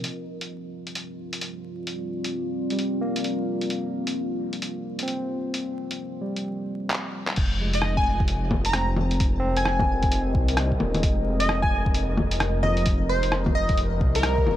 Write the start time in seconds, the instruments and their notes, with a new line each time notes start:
Already playing: ambient pad A#4
0.04 ambient pad G3, closed hi-hat
0.22 ambient pad C4 F4
0.41 closed hi-hat
0.87 closed hi-hat
0.95 closed hi-hat
1.04 ambient pad D5
1.33 closed hi-hat
1.41 closed hi-hat
1.87 closed hi-hat
2.24 closed hi-hat
2.70 tine electric piano G3, closed hi-hat
2.79 closed hi-hat
3.01 tine electric piano A#3
3.16 closed hi-hat
3.24 closed hi-hat
3.61 closed hi-hat
3.70 closed hi-hat
4.07 closed hi-hat
4.45 ambient pad C5
4.53 closed hi-hat
4.62 closed hi-hat
4.99 tine electric piano C4, closed hi-hat
5.08 closed hi-hat
5.54 closed hi-hat
5.91 closed hi-hat
6.21 tine electric piano G3
6.36 closed hi-hat
6.90 clap
7.28 clap
7.36 detuned saw bass F1, kick, closed hi-hat, crash
7.61 tine electric piano G#3
7.73 digital synth lead D#5, closed hi-hat
7.82 cross-stick
7.97 digital synth lead G#5, kick
8.20 kick
8.28 closed hi-hat
8.39 ambient pad A#4
8.51 kick, low bongo
8.65 digital synth lead A#5, closed hi-hat
8.73 tine electric piano C4, cross-stick, closed hi-hat
8.79 ambient pad D#5
8.96 low bongo
9.11 closed hi-hat
9.20 detuned saw bass F1, kick, closed hi-hat
9.40 tine electric piano C4
9.56 detuned saw bass F1, digital synth lead G#5, closed hi-hat
9.65 cross-stick
9.79 kick, low bongo
10.03 kick, closed hi-hat
10.12 closed hi-hat
10.35 detuned saw bass C2, kick
10.48 closed hi-hat
10.57 cross-stick, closed hi-hat
10.72 kick
10.79 detuned saw bass D#1, low bongo
10.95 closed hi-hat, low bongo
11.01 detuned saw bass F1, tine electric piano G#3, kick, closed hi-hat
11.40 digital synth lead D#5, closed hi-hat
11.49 cross-stick
11.62 digital synth lead G#5, kick
11.86 kick
11.94 closed hi-hat
12.17 kick, low bongo
12.31 closed hi-hat
12.40 cross-stick, closed hi-hat
12.63 digital synth lead D#5, low bongo
12.70 tine electric piano F3
12.77 closed hi-hat
12.86 detuned saw bass F1, kick, closed hi-hat
13.09 digital synth lead C5
13.23 detuned saw bass F1, closed hi-hat
13.32 cross-stick
13.46 kick, low bongo
13.55 digital synth lead D#5
13.69 kick, closed hi-hat
13.78 closed hi-hat
14.01 detuned saw bass C2, kick
14.15 digital synth lead A#4, closed hi-hat
14.23 cross-stick, closed hi-hat
14.38 kick
14.46 detuned saw bass D#1, low bongo